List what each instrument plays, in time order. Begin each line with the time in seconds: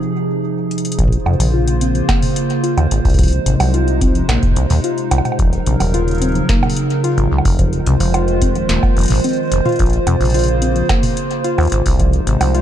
Already playing: ambient pad C3 F3 D#4 G#4
0.71 closed hi-hat
0.78 closed hi-hat
0.85 closed hi-hat
0.92 closed hi-hat
0.99 acid bass A#1, ambient pad C#3 A#3 F4 C5, synth pluck F3, kick, closed hi-hat, mid tom
1.03 mid tom
1.08 mid tom
1.12 closed hi-hat
1.26 acid bass F2, synth pluck C3, high bongo
1.40 acid bass A#1, synth pluck F3, closed hi-hat, open hi-hat
1.54 synth pluck F4
1.68 closed hi-hat
1.81 synth pluck C4, closed hi-hat
1.95 synth pluck F3, closed hi-hat
2.09 synth pluck A#3, kick, snare, closed hi-hat, high bongo
2.22 mid tom, open hi-hat
2.36 closed hi-hat
2.50 closed hi-hat
2.64 synth pluck F4, closed hi-hat
2.77 acid bass D#2, closed hi-hat, high bongo
2.91 acid bass G#1, closed hi-hat
3.05 acid bass C2, kick, open hi-hat
3.10 open hi-hat
3.14 kick, open hi-hat
3.19 ambient pad C3 G#3 D#4, synth pluck F3, kick, closed hi-hat, open hi-hat
3.23 kick, open hi-hat
3.28 open hi-hat
3.33 closed hi-hat
3.46 acid bass G#1, synth pluck C3, closed hi-hat
3.60 acid bass C2, synth pluck F#3, open hi-hat, high bongo
3.74 synth pluck F4, closed hi-hat
3.88 closed hi-hat
4.01 synth pluck C4, kick, closed hi-hat
4.15 synth pluck F3, closed hi-hat
4.29 acid bass A#1, synth pluck A#3, snare, closed hi-hat, high bongo
4.43 kick, closed hi-hat
4.47 kick
4.52 kick
4.56 acid bass C2, closed hi-hat
4.70 acid bass D#2, mid tom, open hi-hat
4.84 synth pluck F4, closed hi-hat
4.98 closed hi-hat
5.11 acid bass C2, closed hi-hat, high bongo
5.18 high bongo
5.25 closed hi-hat, mid tom, high bongo
5.32 high bongo
5.39 acid bass D#1, ambient pad C#3 F#3 A#4, synth pluck F3, kick, closed hi-hat
5.53 closed hi-hat
5.66 acid bass A#1, synth pluck C3, closed hi-hat
5.80 acid bass D#1, synth pluck F#3, open hi-hat, high bongo
5.94 synth pluck F4, closed hi-hat
6.08 closed hi-hat
6.11 closed hi-hat
6.15 closed hi-hat
6.18 synth pluck C4, closed hi-hat
6.22 closed hi-hat
6.25 closed hi-hat
6.29 closed hi-hat
6.32 synth pluck F3, closed hi-hat
6.35 closed hi-hat
6.49 synth pluck A#3, kick, snare, closed hi-hat
6.63 mid tom, high bongo
6.70 open hi-hat
6.77 closed hi-hat
6.90 closed hi-hat
7.04 synth pluck F4, closed hi-hat
7.18 acid bass G#1, closed hi-hat
7.32 acid bass C#2
7.38 high bongo
7.45 acid bass F1, kick, open hi-hat
7.59 ambient pad D#3 G#3 F4 C5, synth pluck F3, kick, closed hi-hat
7.73 closed hi-hat
7.87 acid bass C2, synth pluck C3, closed hi-hat
8.00 acid bass F1, synth pluck F3, open hi-hat
8.14 synth pluck F4, closed hi-hat, high bongo
8.28 closed hi-hat
8.42 synth pluck C4, kick, closed hi-hat
8.55 synth pluck F3, closed hi-hat
8.69 acid bass D#1, synth pluck A#3, snare, closed hi-hat
8.83 kick, high bongo
8.97 acid bass F1, synth pluck F3, closed hi-hat
8.99 closed hi-hat
9.01 closed hi-hat
9.03 closed hi-hat
9.06 closed hi-hat
9.08 acid bass G#1, closed hi-hat, mid tom, open hi-hat
9.15 open hi-hat
9.20 open hi-hat
9.24 synth pluck C4, closed hi-hat, open hi-hat
9.33 open hi-hat
9.52 acid bass F1, closed hi-hat
9.65 synth pluck F4, closed hi-hat, mid tom
9.69 closed hi-hat
9.72 closed hi-hat
9.76 closed hi-hat
9.79 acid bass A#1, ambient pad C#3 A#3, synth pluck F3, kick, closed hi-hat
9.83 closed hi-hat
9.86 closed hi-hat
9.90 closed hi-hat
9.93 closed hi-hat
10.07 acid bass F2, synth pluck C3, closed hi-hat, high bongo
10.21 acid bass A#1, synth pluck F3, open hi-hat
10.25 open hi-hat
10.30 open hi-hat
10.34 synth pluck F4, closed hi-hat, open hi-hat
10.39 open hi-hat
10.43 open hi-hat
10.48 closed hi-hat
10.62 synth pluck C4, closed hi-hat
10.76 synth pluck F3, closed hi-hat
10.89 synth pluck A#3, kick, snare, closed hi-hat, high bongo
11.03 mid tom, open hi-hat
11.17 closed hi-hat
11.31 closed hi-hat
11.44 synth pluck F4, closed hi-hat
11.58 acid bass D#2, closed hi-hat, high bongo
11.60 closed hi-hat
11.63 closed hi-hat
11.65 closed hi-hat
11.67 closed hi-hat
11.70 closed hi-hat
11.72 acid bass G#1, closed hi-hat
11.86 acid bass C2, kick, open hi-hat
11.99 ambient pad C3 G#3 D#4 C5, synth pluck F3, kick, closed hi-hat
12.13 closed hi-hat
12.27 acid bass G#1, synth pluck C3, closed hi-hat
12.41 acid bass C2, synth pluck F3, open hi-hat, high bongo
12.54 synth pluck F4, closed hi-hat